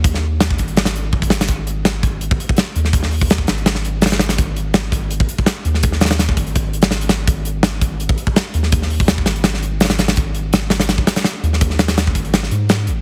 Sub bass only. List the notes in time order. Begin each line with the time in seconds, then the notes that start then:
Already playing: D#2
0.59 G#1
1.49 G#1
2.75 D#2
3.48 G#1
4.38 G#1
5.65 D#2
6.37 G#1
7.27 G#1
8.54 D#2
9.26 G#1
10.17 G#1
11.43 D#2
12.15 G#1
12.51 G#2
12.88 G#1